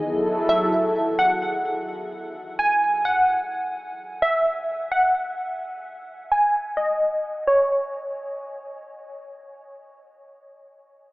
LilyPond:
<<
  \new Staff \with { instrumentName = "Synth pluck" } { \time 4/4 \key fis \dorian \tempo 4 = 129 r4 e''4. fis''8 r4 | r4. gis''4 fis''4. | r4 e''4. fis''8 r4 | r4. gis''4 dis''4. |
cis''2. r4 | r1 | }
  \new Staff \with { instrumentName = "Analog synth pad" } { \time 4/4 \key fis \dorian <fis e' gis' a'>1 | r1 | r1 | r1 |
r1 | r1 | }
>>